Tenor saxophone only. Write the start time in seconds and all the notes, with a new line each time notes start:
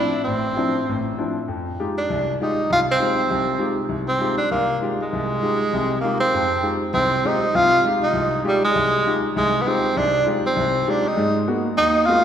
Already playing: D4
0.24 C4
1.98 D4
2.42 D#4
2.73 F4
2.91 C4
4.08 C4
4.38 D4
4.51 A#3
5.02 G#3
6.01 A#3
6.20 C4
6.94 C4
7.26 D#4
7.56 F4
8.03 D#4
8.48 G3
8.65 G#3
9.38 G#3
9.62 B3
9.68 C4
9.97 D4
10.47 C4
10.90 D4
11.08 D#4
11.78 D#4
12.06 F4